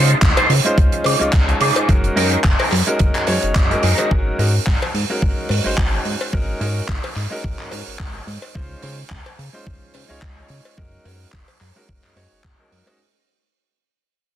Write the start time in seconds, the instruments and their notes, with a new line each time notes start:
Already playing: analog synth bass C#3, clean electric guitar D#4 F4 C5
0.09 closed hi-hat
0.22 analog synth bass C#2, kick, clap, closed hi-hat
0.37 clean electric guitar D#4 F4 C5, closed hi-hat, cowbell
0.50 analog synth bass C#3, open hi-hat
0.65 grand piano G#3 C#4 D#4 F4 C5, muted clean electric guitar stroke, closed hi-hat
0.78 analog synth bass C#2, kick, closed hi-hat
0.92 muted clean electric guitar stroke, closed hi-hat
1.04 analog synth bass C#3, open hi-hat, cowbell, high woodblock
1.19 analog synth bass C#2, grand piano G#3 C#4 D#4 F4, closed hi-hat
1.33 analog synth bass C#2, kick, clap, closed hi-hat
1.48 muted clean electric guitar stroke, closed hi-hat
1.61 analog synth bass C#3, clean electric guitar D#4 F4 G#4, open hi-hat, high woodblock
1.76 closed hi-hat, cowbell
1.88 analog synth bass F#1, grand piano G#3 C#4 D#4 F#4 A#4, kick, closed hi-hat
2.04 closed hi-hat
2.16 analog synth bass F#2, grand piano G#3 C#4 D#4 F#4 A#4, clean electric guitar D#4 G#4 A#4, open hi-hat
2.32 closed hi-hat
2.44 analog synth bass F#1, kick, clap, closed hi-hat
2.59 clean electric guitar D#4 G#4 A#4, open hi-hat, cowbell
2.72 analog synth bass F#2, clap, open hi-hat
2.87 grand piano G#3 C#4 D#4 F#4 A#4, muted clean electric guitar stroke, closed hi-hat
2.99 analog synth bass F#1, kick, closed hi-hat
3.14 analog synth bass F#2, muted clean electric guitar stroke, clap, closed hi-hat
3.27 analog synth bass F#2, grand piano G#3 C#4 D#4 F#4 C#5, open hi-hat, cowbell
3.42 analog synth bass F#1, closed hi-hat
3.55 analog synth bass F#1, kick, clap, closed hi-hat, high woodblock
3.70 grand piano G#3 C#4 D#4 F#4 A#4, muted clean electric guitar stroke, closed hi-hat
3.83 analog synth bass F#2, clean electric guitar D#4 G#4 A#4, open hi-hat
3.98 grand piano G#3 C#4 D#4 F#4 D#5, closed hi-hat, cowbell
4.11 analog synth bass G#1, grand piano G#3, kick
4.38 analog synth bass G#2, grand piano G#3 C#4 D#4 F#4 A#4, open hi-hat
4.67 analog synth bass G#1, kick, clap
4.82 cowbell
4.94 analog synth bass G#2, open hi-hat
5.10 grand piano G#3 C#4 D#4 F#4 A#4
5.22 analog synth bass G#1, kick
5.49 analog synth bass G#2, open hi-hat, cowbell
5.64 analog synth bass G#1, grand piano G#3 C#4 D#4 F#4 C5
5.78 analog synth bass G#1, kick, clap
6.05 analog synth bass G#2, open hi-hat
6.21 cowbell
6.33 analog synth bass G#1, grand piano G#3 C#4 D#4 F#4 A#4, kick
6.60 analog synth bass G#2, grand piano G#3 C#4 D#4 F#4 A#4, open hi-hat
6.88 analog synth bass G#1, kick, clap
7.03 open hi-hat, cowbell
7.16 analog synth bass G#2, clap, open hi-hat
7.30 grand piano G#3 C#4 D#4 F#4 A#4
7.44 analog synth bass G#1, kick
7.59 analog synth bass G#2, clap
7.71 analog synth bass G#2, open hi-hat, cowbell
7.87 analog synth bass G#1
7.99 analog synth bass G#1, kick, clap
8.27 analog synth bass G#2, open hi-hat
8.42 cowbell
8.55 analog synth bass C#2, grand piano G#3 C#4 D#4 F4 C5, kick
8.82 analog synth bass C#3, grand piano G#3 C#4 D#4 F4 C5, open hi-hat
9.10 analog synth bass C#2, kick, clap
9.26 cowbell
9.39 analog synth bass C#3, open hi-hat
9.53 grand piano G#3 C#4 D#4 F4 C5
9.67 analog synth bass C#2, kick
9.94 analog synth bass C#3, open hi-hat, cowbell
10.08 analog synth bass C#2, grand piano G#3 C#4 D#4 F4 C#5
10.22 analog synth bass C#2, kick, clap
10.48 analog synth bass C#3, open hi-hat
10.65 cowbell
10.77 analog synth bass F#1, grand piano G#3 C#4 D#4 F#4 A#4, kick
11.05 analog synth bass F#2, grand piano G#3 C#4 D#4 F#4 A#4, open hi-hat
11.32 analog synth bass F#1, kick, clap
11.48 open hi-hat, cowbell
11.61 analog synth bass F#2, clap, open hi-hat
11.76 grand piano G#3 C#4 D#4 F#4 A#4
11.89 analog synth bass F#1, kick
12.04 analog synth bass F#2, clap
12.16 analog synth bass F#2, grand piano G#3 C#4 D#4 F#4 C#5, open hi-hat, cowbell
12.31 analog synth bass F#1
12.44 analog synth bass F#1, kick, clap
12.59 grand piano G#3 C#4 D#4 F#4 A#4
12.72 analog synth bass F#2, open hi-hat
12.86 grand piano G#3 C#4 D#4 F#4 D#5, cowbell